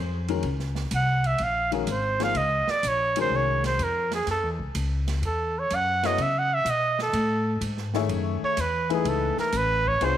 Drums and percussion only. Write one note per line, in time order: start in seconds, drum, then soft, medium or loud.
0.28 ride soft
0.43 ride medium
0.59 snare soft
0.75 snare soft
0.91 hi-hat pedal soft
0.91 ride medium
1.24 ride soft
1.38 ride medium
1.72 ride soft
1.87 hi-hat pedal soft
1.87 ride medium
2.20 snare soft
2.20 ride medium
2.35 ride medium
2.68 snare medium
2.83 hi-hat pedal medium
2.83 ride medium
3.16 ride medium
3.64 snare soft
3.64 ride soft
3.79 hi-hat pedal soft
3.79 ride medium
4.11 snare medium
4.11 ride soft
4.27 snare soft
4.27 ride medium
4.59 kick medium
4.75 hi-hat pedal medium
4.75 ride medium
5.08 snare soft
5.08 ride medium
5.23 ride medium
5.70 hi-hat pedal soft
5.70 ride medium
6.03 snare medium
6.03 ride medium
6.18 ride medium
6.66 hi-hat pedal medium
6.66 ride medium
6.99 snare soft
7.13 ride medium
7.61 hi-hat pedal soft
7.61 ride medium
7.77 snare soft
7.94 snare soft
8.09 ride medium
8.57 hi-hat pedal medium
8.57 ride medium
8.90 ride medium
9.05 ride medium
9.38 snare soft
9.52 hi-hat pedal medium
9.52 ride medium
9.86 kick medium
10.01 ride medium